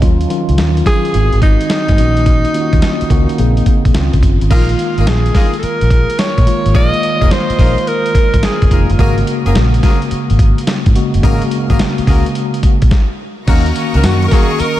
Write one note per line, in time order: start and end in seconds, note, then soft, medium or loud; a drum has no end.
0.01 0.24 D#2 loud
0.01 0.27 D#3 loud
0.01 0.27 F#3 medium
0.01 0.28 C#4 medium
0.01 0.28 F4 loud
0.01 kick loud
0.01 closed hi-hat medium
0.21 closed hi-hat soft
0.29 0.81 D#3 medium
0.29 0.81 F#3 medium
0.29 0.81 C#4 medium
0.29 0.81 F4 medium
0.29 closed hi-hat medium
0.49 0.56 C#2 medium
0.49 closed hi-hat soft
0.58 0.81 D#2 medium
0.58 snare loud
0.58 closed hi-hat medium
0.77 closed hi-hat soft
0.85 1.12 D#3 medium
0.85 1.14 F#3 medium
0.85 1.14 C#4 medium
0.85 1.14 F4 medium
0.85 1.39 G#4 loud
0.85 kick medium
0.85 snare medium
0.85 closed hi-hat medium
1.05 closed hi-hat soft
1.13 1.29 G#1 loud
1.13 1.91 D#3 medium
1.13 1.91 G#3 medium
1.13 1.91 C4 medium
1.13 1.91 F#4 medium
1.13 closed hi-hat medium
1.33 1.55 G#1 medium
1.33 closed hi-hat soft
1.42 3.91 D#4 loud
1.42 kick medium
1.42 closed hi-hat medium
1.61 closed hi-hat medium
1.70 snare loud
1.70 closed hi-hat medium
1.88 1.97 G#2 loud
1.88 kick medium
1.88 closed hi-hat medium
1.97 2.43 A#1 medium
1.97 2.49 D#3 medium
1.97 2.49 A#3 medium
1.97 2.49 C#4 medium
1.97 2.50 F#4 medium
1.97 closed hi-hat medium
2.17 closed hi-hat soft
2.26 kick loud
2.26 closed hi-hat medium
2.45 closed hi-hat soft
2.54 3.05 D#3 medium
2.54 3.05 A#3 medium
2.54 3.06 C#4 medium
2.54 2.63 F4 medium
2.54 closed hi-hat medium
2.61 3.09 F#4 medium
2.73 2.80 D#2 medium
2.73 kick medium
2.73 closed hi-hat soft
2.82 snare loud
2.82 closed hi-hat medium
3.01 muted fingered electric bass stroke soft
3.01 closed hi-hat soft
3.10 3.25 C#2 medium
3.10 3.38 D#3 medium
3.10 3.37 A#3 medium
3.10 3.39 C#4 medium
3.10 3.39 F#4 loud
3.10 kick medium
3.10 closed hi-hat medium
3.29 closed hi-hat soft
3.38 3.61 A#1 loud
3.38 3.89 C#3 medium
3.38 3.90 A#3 medium
3.38 3.90 C4 medium
3.38 3.90 G#4 loud
3.38 closed hi-hat medium
3.57 closed hi-hat soft
3.66 muted fingered electric bass stroke soft
3.66 kick medium
3.66 closed hi-hat medium
3.85 3.93 A#1 medium
3.85 kick medium
3.85 closed hi-hat medium
3.94 4.10 C#2 medium
3.94 4.45 D#3 medium
3.94 4.46 C4 medium
3.94 4.46 C#4 medium
3.94 4.46 F4 loud
3.94 snare loud
3.94 closed hi-hat medium
4.13 4.21 C#2 medium
4.13 kick medium
4.13 closed hi-hat soft
4.23 4.38 F#1 medium
4.23 kick medium
4.23 closed hi-hat medium
4.41 4.49 G#1 medium
4.41 closed hi-hat soft
4.50 4.73 A#1 loud
4.50 5.53 D#3 medium
4.50 5.53 G#3 medium
4.50 5.53 A#3 medium
4.50 4.68 A#3 medium
4.50 4.68 D#4 medium
4.50 4.68 F4 medium
4.50 5.53 F4 medium
4.50 5.09 F4 medium
4.50 4.68 G#4 medium
4.50 4.68 A#4 loud
4.50 kick loud
4.50 closed hi-hat medium
4.50 crash medium
4.69 closed hi-hat soft
4.79 closed hi-hat medium
4.97 5.05 G#1 medium
4.97 5.06 A#3 medium
4.97 5.06 D#4 medium
4.97 5.06 F4 medium
4.97 5.06 G#4 medium
4.97 5.06 A#4 medium
4.97 closed hi-hat soft
5.07 5.29 A#1 medium
5.07 5.58 G#4 medium
5.07 snare loud
5.07 closed hi-hat medium
5.26 closed hi-hat soft
5.34 5.52 A#3 medium
5.34 5.52 D#4 medium
5.34 5.52 F4 medium
5.34 5.52 G#4 medium
5.34 5.52 A#4 medium
5.34 kick medium
5.34 snare medium
5.34 open hi-hat medium
5.54 closed hi-hat soft
5.59 5.65 A4 medium
5.63 6.21 A#4 loud
5.63 muted fingered electric bass stroke soft
5.63 closed hi-hat medium
5.81 6.04 A#1 medium
5.81 closed hi-hat medium
5.90 kick medium
5.90 closed hi-hat medium
6.10 closed hi-hat medium
6.19 6.75 C#5 loud
6.19 snare loud
6.19 closed hi-hat medium
6.38 6.45 A#2 loud
6.38 kick medium
6.38 closed hi-hat soft
6.46 6.72 D#3 medium
6.46 6.72 G#3 medium
6.46 6.72 A#3 medium
6.46 6.73 F4 medium
6.46 closed hi-hat medium
6.66 6.73 G#1 medium
6.66 closed hi-hat soft
6.74 6.90 A#1 loud
6.74 7.77 D#3 medium
6.74 7.77 G#3 medium
6.74 7.77 A#3 medium
6.74 6.92 A#3 medium
6.74 6.92 D#4 medium
6.74 6.92 F4 medium
6.74 7.77 F4 medium
6.74 6.92 G#4 medium
6.74 6.92 A#4 loud
6.74 7.33 D#5 loud
6.74 kick loud
6.74 closed hi-hat medium
6.94 closed hi-hat soft
7.03 closed hi-hat medium
7.21 7.29 F1 medium
7.21 7.30 A#3 medium
7.21 7.30 D#4 medium
7.21 7.30 F4 medium
7.21 7.30 G#4 medium
7.21 7.30 A#4 medium
7.21 kick medium
7.21 closed hi-hat soft
7.31 7.89 C5 loud
7.31 snare loud
7.31 closed hi-hat medium
7.50 muted fingered electric bass stroke soft
7.50 closed hi-hat medium
7.59 7.74 A#1 loud
7.59 7.77 A#3 medium
7.59 7.76 D#4 medium
7.59 7.76 F4 medium
7.59 7.76 G#4 medium
7.59 7.77 A#4 medium
7.59 kick medium
7.59 open hi-hat medium
7.78 closed hi-hat soft
7.87 8.46 A#4 loud
7.87 closed hi-hat medium
8.06 closed hi-hat medium
8.15 muted fingered electric bass stroke soft
8.15 kick medium
8.15 closed hi-hat medium
8.34 8.41 G#1 medium
8.34 kick medium
8.34 closed hi-hat medium
8.43 8.90 G#4 medium
8.43 snare loud
8.43 closed hi-hat medium
8.62 8.69 F1 medium
8.62 kick medium
8.62 closed hi-hat soft
8.70 8.86 F1 medium
8.70 8.96 D#3 medium
8.70 8.97 G#3 medium
8.70 8.97 A#3 medium
8.70 8.89 A#3 medium
8.70 8.88 D#4 medium
8.70 8.89 F4 medium
8.70 8.97 F4 medium
8.70 8.89 G#4 medium
8.70 8.89 A#4 medium
8.70 kick medium
8.70 closed hi-hat medium
8.90 8.97 F#1 medium
8.90 closed hi-hat soft
8.98 9.22 G#1 loud
8.98 10.01 C#3 loud
8.98 10.01 G#3 medium
8.98 10.02 A#3 medium
8.98 9.17 A#3 loud
8.98 9.16 C#4 medium
8.98 9.16 F#4 medium
8.98 10.02 F#4 loud
8.98 9.17 G#4 medium
8.98 9.17 A#4 loud
8.98 kick loud
8.98 closed hi-hat medium
9.18 closed hi-hat soft
9.27 closed hi-hat medium
9.46 9.53 F#1 loud
9.46 9.55 A#3 medium
9.46 9.54 C#4 medium
9.46 9.55 F#4 medium
9.46 9.55 G#4 medium
9.46 9.55 A#4 medium
9.46 closed hi-hat medium
9.55 9.78 A#1 loud
9.55 snare loud
9.55 closed hi-hat medium
9.74 closed hi-hat soft
9.83 10.01 A#3 medium
9.83 10.01 C#4 medium
9.83 10.01 F#4 medium
9.83 10.01 G#4 medium
9.83 10.01 A#4 medium
9.83 kick medium
9.83 snare medium
9.83 open hi-hat medium
10.02 closed hi-hat soft
10.11 muted fingered electric bass stroke soft
10.11 closed hi-hat medium
10.30 10.53 G#1 medium
10.30 closed hi-hat medium
10.39 kick medium
10.39 closed hi-hat medium
10.58 closed hi-hat medium
10.67 snare loud
10.67 closed hi-hat medium
10.86 10.94 G#2 loud
10.86 kick medium
10.86 closed hi-hat medium
10.95 11.21 C#3 medium
10.95 11.21 G#3 medium
10.95 11.21 A#3 medium
10.95 11.21 F#4 loud
10.95 closed hi-hat medium
11.14 11.22 F#1 medium
11.14 closed hi-hat medium
11.23 11.38 G#1 loud
11.23 12.25 C#3 loud
11.23 12.26 G#3 medium
11.23 12.26 A#3 medium
11.23 11.41 A#3 medium
11.23 11.41 C#4 medium
11.23 11.41 F#4 medium
11.23 12.26 F#4 loud
11.23 11.41 G#4 medium
11.23 11.41 A#4 loud
11.23 kick loud
11.23 closed hi-hat medium
11.42 closed hi-hat soft
11.51 closed hi-hat medium
11.70 11.78 G#1 medium
11.70 11.79 A#3 medium
11.70 11.79 C#4 medium
11.70 11.79 F#4 medium
11.70 11.79 G#4 medium
11.70 11.79 A#4 medium
11.70 kick medium
11.70 closed hi-hat medium
11.79 snare loud
11.79 closed hi-hat medium
11.98 muted fingered electric bass stroke soft
11.98 closed hi-hat soft
12.07 12.22 C#2 loud
12.07 12.25 A#3 medium
12.07 12.25 C#4 medium
12.07 12.25 F#4 medium
12.07 12.25 G#4 medium
12.07 12.25 A#4 medium
12.07 kick medium
12.07 open hi-hat medium
12.26 closed hi-hat soft
12.35 closed hi-hat medium
12.54 closed hi-hat medium
12.63 muted fingered electric bass stroke medium
12.63 kick medium
12.63 closed hi-hat medium
12.82 12.90 A#1 medium
12.82 kick medium
12.82 closed hi-hat medium
12.91 kick loud
12.91 snare medium
13.47 13.70 D#2 loud
13.47 13.99 D#3 medium
13.47 13.99 A#3 medium
13.47 13.65 A#3 loud
13.47 13.65 C#4 medium
13.47 13.99 C#4 medium
13.47 13.65 D#4 medium
13.47 13.65 F#4 medium
13.47 13.99 F#4 loud
13.47 14.80 A#4 medium
13.47 13.65 A#4 loud
13.47 14.80 D#5 medium
13.47 14.80 A#5 medium
13.47 14.80 C#6 medium
13.47 kick loud
13.47 closed hi-hat medium
13.47 crash medium
13.47 tambourine medium
13.66 closed hi-hat medium
13.76 closed hi-hat medium
13.76 tambourine medium
13.94 14.02 C#2 loud
13.94 14.03 A#3 medium
13.94 14.03 C#4 medium
13.94 14.03 D#4 medium
13.94 14.03 F#4 medium
13.94 14.03 A#4 medium
13.94 closed hi-hat soft
14.03 14.26 F#2 medium
14.03 14.80 D#3 medium
14.03 14.80 A#3 medium
14.03 14.80 C#4 medium
14.03 14.80 F#4 medium
14.03 14.26 F#4 medium
14.03 snare loud
14.03 closed hi-hat medium
14.03 tambourine loud
14.22 closed hi-hat soft
14.28 14.50 A#3 medium
14.28 14.49 C#4 medium
14.28 14.49 D#4 medium
14.28 14.49 F#4 medium
14.28 14.34 A#4 medium
14.28 14.50 A#4 medium
14.28 kick medium
14.28 snare medium
14.28 open hi-hat medium
14.28 tambourine medium
14.33 14.62 G#4 medium
14.51 closed hi-hat soft
14.60 14.80 A#4 loud
14.60 muted fingered electric bass stroke soft
14.60 closed hi-hat medium
14.60 tambourine medium